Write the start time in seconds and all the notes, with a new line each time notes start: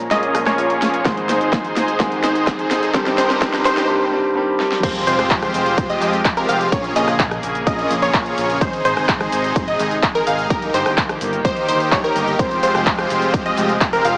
Already playing: A#2 F3 A#3 C#4 G#4 C#5 A#5, riser
0.11 A#1 A#3 C#4 F4 G#4 D#5, snare, closed hi-hat, cabasa
0.23 closed hi-hat, cabasa
0.33 A#1 A#2 F3 A#3 C#4 A#4, cross-stick, open hi-hat, cabasa
0.46 A#3 C#4 F4 G#4 C#5, cross-stick, snare, closed hi-hat, cabasa
0.58 A#1, open hi-hat, cabasa
0.70 closed hi-hat, cabasa
0.82 A#1, snare, open hi-hat, cabasa
0.94 closed hi-hat, cabasa
1.04 G#1 G#2 D#3 G#3 C4 G#4 C5 D#5 C6, kick, snare, closed hi-hat, cabasa
1.17 closed hi-hat, cabasa
1.29 G#1 D#4 G#4 C5, snare, open hi-hat, cabasa
1.41 G#1, closed hi-hat, cabasa
1.53 G#1, kick, snare, closed hi-hat, cabasa
1.65 closed hi-hat, cabasa
1.76 G#1, snare, open hi-hat, cabasa
1.88 closed hi-hat, cabasa
1.99 G#1 G#2 D#3 G#3 C4 D#4 G#4 C5, kick, snare, closed hi-hat, cabasa
2.12 closed hi-hat, cabasa
2.23 G#1 D#4 G#4 C5, snare, open hi-hat, cabasa
2.35 closed hi-hat, cabasa
2.47 G#1, kick, snare, closed hi-hat, cabasa
2.59 closed hi-hat, cabasa
2.71 G#1, snare, open hi-hat, cabasa
2.83 closed hi-hat, cabasa
2.93 G1 G2 D#3 G3 C4 D#4 G4 C5 A#5, kick, snare, closed hi-hat, cabasa
3.06 snare, closed hi-hat, cabasa
3.18 G1 D#4 G4 C5, snare, open hi-hat, cabasa
3.30 G1, snare, closed hi-hat, cabasa
3.40 G1 G2 D#3 G3 C4 G4 C5, kick, snare, closed hi-hat, cabasa
3.53 snare, closed hi-hat, cabasa
3.65 G1 D#4 G4 C5, snare, open hi-hat, cabasa
3.77 snare, closed hi-hat, cabasa
3.88 G2 D#3 G3 C4 G4
4.11 G2 D#3 G3 C4 G4
4.35 G2 D#3 G3 C4 G4
4.59 G2 D#3 G3 C4 G4, snare
4.72 snare
4.83 F1 F3 G#3 C4 F4 G4 C5, kick, closed hi-hat, crash, ride, impact, cabasa
4.95 closed hi-hat, cabasa
5.07 F1 G#3 C4 F4 G4 C5, open hi-hat, cabasa
5.19 F1, cross-stick, closed hi-hat, cabasa
5.31 F1, kick, clap, closed hi-hat, ride, cabasa
5.43 cross-stick, closed hi-hat, cabasa
5.54 F1, open hi-hat, cabasa
5.66 closed hi-hat, cabasa
5.78 F1, kick, closed hi-hat, ride, cabasa
5.90 G#3 C4 F4 G4 D#5, closed hi-hat, cabasa
6.02 F1, clap, open hi-hat, cabasa
6.13 closed hi-hat, cabasa
6.25 F1, kick, clap, closed hi-hat, ride, cabasa
6.37 G#3 C4 F4 G4 A#4, closed hi-hat, cabasa
6.49 F1 G#3 C4 F4 G4 F5, open hi-hat, cabasa
6.61 closed hi-hat, cabasa
6.72 A#1 C#3 A#3 C#4 F4 G#4 C#5, kick, closed hi-hat, ride, cabasa
6.84 closed hi-hat, cabasa
6.96 A#1 A#3 C#4 F4 G#4 D#5, clap, open hi-hat, cabasa
7.08 A#1, cross-stick, closed hi-hat, cabasa
7.20 A#1, kick, clap, closed hi-hat, ride, cabasa
7.31 cross-stick, closed hi-hat, cabasa
7.43 A#1, open hi-hat, cabasa
7.55 closed hi-hat, cabasa
7.67 A#1 A#3 C#4 F4 G#4 D#5, kick, closed hi-hat, ride, cabasa
7.79 closed hi-hat, cabasa
7.90 A#1, open hi-hat, cabasa
8.02 A#3 C#4 F4 G#4 C#5, closed hi-hat, cabasa
8.14 A#1, kick, clap, open hi-hat, ride, cabasa
8.26 closed hi-hat, cabasa
8.38 A#1, open hi-hat, cabasa
8.50 closed hi-hat, cabasa
8.61 G#1 C3 G#3 D#4 G#4 C5, kick, closed hi-hat, ride, cabasa
8.73 closed hi-hat, cabasa
8.85 G#1 D#4 G#4 C5, open hi-hat, cabasa
8.97 G#1, cross-stick, closed hi-hat, cabasa
9.09 G#1, kick, clap, closed hi-hat, ride, cabasa
9.21 cross-stick, closed hi-hat, cabasa
9.32 G#1, open hi-hat, cabasa
9.44 closed hi-hat, cabasa
9.56 G#1, kick, closed hi-hat, ride, cabasa
9.68 D#4 G#4 D#5, closed hi-hat, cabasa
9.80 G#1, clap, open hi-hat, cabasa
9.91 closed hi-hat, cabasa
10.03 G#1, kick, clap, closed hi-hat, ride, cabasa
10.15 D#4 G#4 A#4, closed hi-hat, cabasa
10.27 G#1 D#4 G#4 F5, open hi-hat, cabasa
10.39 closed hi-hat, cabasa
10.50 G1 D#3 A#3 D#4 G4 A#4, kick, closed hi-hat, ride, cabasa
10.62 closed hi-hat, cabasa
10.74 G1 D#4 G4 C5, clap, open hi-hat, cabasa
10.86 G1, cross-stick, closed hi-hat, cabasa
10.98 G1, kick, clap, closed hi-hat, ride, cabasa
11.09 cross-stick, closed hi-hat, cabasa
11.21 G1, open hi-hat, cabasa
11.33 closed hi-hat, cabasa
11.45 G1 D#4 G4 C5, kick, closed hi-hat, ride, cabasa
11.57 closed hi-hat, cabasa
11.68 G1 D#4 G4 C5, open hi-hat, cabasa
11.80 closed hi-hat, cabasa
11.92 G1 G4 C#5, kick, clap, open hi-hat, ride, cabasa
12.04 D#4 G4 A#4, closed hi-hat, cabasa
12.16 G1, open hi-hat, cabasa
12.28 closed hi-hat, cabasa
12.39 F1 F3 G#3 C4 F4 G4 C5, kick, closed hi-hat, ride, cabasa
12.51 closed hi-hat, cabasa
12.63 F1 G#3 C4 F4 G4 C5, open hi-hat, cabasa
12.75 F1, cross-stick, closed hi-hat, cabasa
12.86 F1, kick, clap, closed hi-hat, ride, cabasa
12.98 cross-stick, closed hi-hat, cabasa
13.10 F1, open hi-hat, cabasa
13.22 closed hi-hat, cabasa
13.34 F1, kick, closed hi-hat, ride, cabasa
13.46 G#3 C4 F4 G4 D#5, closed hi-hat, cabasa
13.57 F1, clap, open hi-hat, cabasa
13.69 closed hi-hat, cabasa
13.81 F1, kick, clap, closed hi-hat, ride, cabasa
13.93 G#3 C4 F4 G4 A#4, closed hi-hat, cabasa
14.05 F1 G#3 C4 F4 G4 F5, open hi-hat, cabasa